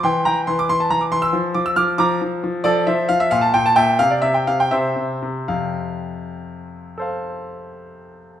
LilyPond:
<<
  \new Staff \with { instrumentName = "Grand piano" } { \time 6/8 \key f \major \tempo 4. = 85 << { <g'' c'''>8 <g'' bes''>8 c'''16 d'''16 c'''16 a''16 bes''16 d'''16 c'''16 <c''' e'''>16~ | <c''' e'''>8 d'''16 e'''16 <d''' f'''>8 <bes'' d'''>8 r4 | <a' d''>8 <c'' e''>8 f''16 e''16 f''16 a''16 g''16 a''16 <e'' g''>8 | f''16 d''16 e''16 g''16 f''16 g''16 <c'' e''>4. |
f''2.~ | f''2. | } \\ { r2. | r2. | r2. | r2. |
r2. | <a' c'' f''>2. | } >> }
  \new Staff \with { instrumentName = "Grand piano" } { \clef bass \time 6/8 \key f \major e8 e8 e8 e8 e8 e8 | f8 f8 f8 f8 f8 f8 | f8 f8 f8 bes,8 bes,8 bes,8 | c8 c8 c8 c8 c8 c8 |
<f, c>2.~ | <f, c>2. | }
>>